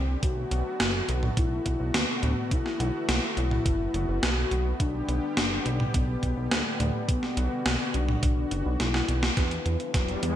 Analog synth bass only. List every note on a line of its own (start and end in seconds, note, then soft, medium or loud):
0.00 0.16 C2 medium
0.23 0.45 B1 loud
0.51 0.62 B1 medium
0.80 1.02 F#1 medium
1.09 1.30 B1 medium
1.37 1.59 B1 medium
1.66 1.77 B1 medium
1.80 1.91 B1 medium
1.94 2.05 D2 medium
2.23 2.34 D2 loud
2.51 2.62 B1 loud
2.80 2.91 B1 loud
3.09 3.19 B1 loud
3.37 3.59 B1 medium
3.66 3.88 F#1 medium
3.94 4.05 F#1 medium
4.08 4.19 F#1 medium
4.23 4.45 B1 loud
4.51 4.73 B1 medium
4.80 5.02 B1 medium
5.08 5.19 B1 medium
5.37 5.59 F#1 medium
5.66 5.88 B1 medium
5.94 6.16 B1 medium
6.23 6.34 B1 medium
6.37 6.48 B1 loud
6.51 6.62 D2 medium
6.80 6.91 D2 loud
7.08 7.19 B1 loud
7.37 7.48 B1 loud
7.66 7.77 B1 medium
7.94 8.16 B1 medium
8.23 8.45 B1 medium
8.51 8.62 F#1 medium
8.66 8.77 B1 loud
8.80 9.02 B1 loud
9.09 9.30 B1 medium
9.37 9.59 E2 loud
9.66 9.77 E2 medium
9.94 10.16 E1 medium
10.23 10.36 E2 medium